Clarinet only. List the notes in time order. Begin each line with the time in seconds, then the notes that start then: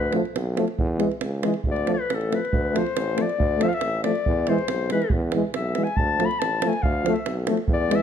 Already playing: B4
1.71 D5
1.94 B4
2.14 A4
2.35 B4
2.77 C5
3.22 D5
3.63 E5
3.69 F5
3.74 E5
4.03 D5
4.49 C5
4.92 B4
5.56 E5
5.84 G#5
5.97 A5
6.25 B5
6.39 A5
6.68 G#5
6.82 F5
7.14 E5
7.73 D5
7.95 E5